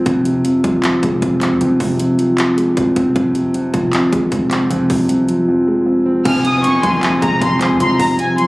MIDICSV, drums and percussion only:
0, 0, Header, 1, 2, 480
1, 0, Start_track
1, 0, Key_signature, -4, "minor"
1, 0, Tempo, 387097
1, 74, Time_signature, 4, 2, 24, 8
1, 10503, End_track
2, 0, Start_track
2, 0, Title_t, "Drums"
2, 75, Note_on_c, 9, 36, 122
2, 75, Note_on_c, 9, 42, 75
2, 199, Note_off_c, 9, 36, 0
2, 199, Note_off_c, 9, 42, 0
2, 314, Note_on_c, 9, 42, 76
2, 438, Note_off_c, 9, 42, 0
2, 554, Note_on_c, 9, 42, 87
2, 678, Note_off_c, 9, 42, 0
2, 794, Note_on_c, 9, 36, 95
2, 794, Note_on_c, 9, 42, 67
2, 918, Note_off_c, 9, 36, 0
2, 918, Note_off_c, 9, 42, 0
2, 1035, Note_on_c, 9, 39, 120
2, 1036, Note_on_c, 9, 42, 72
2, 1159, Note_off_c, 9, 39, 0
2, 1160, Note_off_c, 9, 42, 0
2, 1275, Note_on_c, 9, 36, 103
2, 1277, Note_on_c, 9, 42, 82
2, 1399, Note_off_c, 9, 36, 0
2, 1401, Note_off_c, 9, 42, 0
2, 1515, Note_on_c, 9, 36, 90
2, 1515, Note_on_c, 9, 42, 85
2, 1639, Note_off_c, 9, 36, 0
2, 1639, Note_off_c, 9, 42, 0
2, 1753, Note_on_c, 9, 42, 77
2, 1755, Note_on_c, 9, 39, 93
2, 1877, Note_off_c, 9, 42, 0
2, 1879, Note_off_c, 9, 39, 0
2, 1995, Note_on_c, 9, 42, 78
2, 2119, Note_off_c, 9, 42, 0
2, 2234, Note_on_c, 9, 46, 78
2, 2235, Note_on_c, 9, 36, 82
2, 2358, Note_off_c, 9, 46, 0
2, 2359, Note_off_c, 9, 36, 0
2, 2473, Note_on_c, 9, 42, 82
2, 2597, Note_off_c, 9, 42, 0
2, 2713, Note_on_c, 9, 42, 69
2, 2837, Note_off_c, 9, 42, 0
2, 2955, Note_on_c, 9, 39, 121
2, 2956, Note_on_c, 9, 42, 80
2, 3079, Note_off_c, 9, 39, 0
2, 3080, Note_off_c, 9, 42, 0
2, 3197, Note_on_c, 9, 42, 81
2, 3321, Note_off_c, 9, 42, 0
2, 3435, Note_on_c, 9, 36, 97
2, 3435, Note_on_c, 9, 42, 87
2, 3559, Note_off_c, 9, 36, 0
2, 3559, Note_off_c, 9, 42, 0
2, 3673, Note_on_c, 9, 42, 89
2, 3674, Note_on_c, 9, 36, 96
2, 3797, Note_off_c, 9, 42, 0
2, 3798, Note_off_c, 9, 36, 0
2, 3915, Note_on_c, 9, 36, 126
2, 3915, Note_on_c, 9, 42, 75
2, 4039, Note_off_c, 9, 36, 0
2, 4039, Note_off_c, 9, 42, 0
2, 4154, Note_on_c, 9, 42, 76
2, 4278, Note_off_c, 9, 42, 0
2, 4393, Note_on_c, 9, 42, 83
2, 4517, Note_off_c, 9, 42, 0
2, 4633, Note_on_c, 9, 42, 69
2, 4634, Note_on_c, 9, 36, 96
2, 4757, Note_off_c, 9, 42, 0
2, 4758, Note_off_c, 9, 36, 0
2, 4874, Note_on_c, 9, 39, 125
2, 4875, Note_on_c, 9, 42, 72
2, 4998, Note_off_c, 9, 39, 0
2, 4999, Note_off_c, 9, 42, 0
2, 5115, Note_on_c, 9, 36, 105
2, 5116, Note_on_c, 9, 42, 80
2, 5239, Note_off_c, 9, 36, 0
2, 5240, Note_off_c, 9, 42, 0
2, 5354, Note_on_c, 9, 36, 97
2, 5354, Note_on_c, 9, 42, 84
2, 5478, Note_off_c, 9, 36, 0
2, 5478, Note_off_c, 9, 42, 0
2, 5593, Note_on_c, 9, 42, 78
2, 5594, Note_on_c, 9, 39, 97
2, 5717, Note_off_c, 9, 42, 0
2, 5718, Note_off_c, 9, 39, 0
2, 5835, Note_on_c, 9, 42, 73
2, 5959, Note_off_c, 9, 42, 0
2, 6074, Note_on_c, 9, 46, 79
2, 6075, Note_on_c, 9, 36, 79
2, 6198, Note_off_c, 9, 46, 0
2, 6199, Note_off_c, 9, 36, 0
2, 6313, Note_on_c, 9, 42, 84
2, 6437, Note_off_c, 9, 42, 0
2, 6554, Note_on_c, 9, 42, 70
2, 6678, Note_off_c, 9, 42, 0
2, 7755, Note_on_c, 9, 36, 125
2, 7755, Note_on_c, 9, 42, 76
2, 7755, Note_on_c, 9, 49, 103
2, 7879, Note_off_c, 9, 36, 0
2, 7879, Note_off_c, 9, 42, 0
2, 7879, Note_off_c, 9, 49, 0
2, 7994, Note_on_c, 9, 42, 77
2, 8118, Note_off_c, 9, 42, 0
2, 8233, Note_on_c, 9, 42, 85
2, 8357, Note_off_c, 9, 42, 0
2, 8474, Note_on_c, 9, 36, 97
2, 8474, Note_on_c, 9, 42, 71
2, 8598, Note_off_c, 9, 36, 0
2, 8598, Note_off_c, 9, 42, 0
2, 8715, Note_on_c, 9, 39, 127
2, 8716, Note_on_c, 9, 42, 74
2, 8839, Note_off_c, 9, 39, 0
2, 8840, Note_off_c, 9, 42, 0
2, 8955, Note_on_c, 9, 36, 103
2, 8957, Note_on_c, 9, 42, 80
2, 9079, Note_off_c, 9, 36, 0
2, 9081, Note_off_c, 9, 42, 0
2, 9195, Note_on_c, 9, 36, 93
2, 9195, Note_on_c, 9, 42, 91
2, 9319, Note_off_c, 9, 36, 0
2, 9319, Note_off_c, 9, 42, 0
2, 9433, Note_on_c, 9, 42, 83
2, 9435, Note_on_c, 9, 39, 93
2, 9557, Note_off_c, 9, 42, 0
2, 9559, Note_off_c, 9, 39, 0
2, 9675, Note_on_c, 9, 42, 78
2, 9799, Note_off_c, 9, 42, 0
2, 9914, Note_on_c, 9, 46, 80
2, 9915, Note_on_c, 9, 36, 83
2, 10038, Note_off_c, 9, 46, 0
2, 10039, Note_off_c, 9, 36, 0
2, 10154, Note_on_c, 9, 42, 87
2, 10278, Note_off_c, 9, 42, 0
2, 10394, Note_on_c, 9, 42, 70
2, 10503, Note_off_c, 9, 42, 0
2, 10503, End_track
0, 0, End_of_file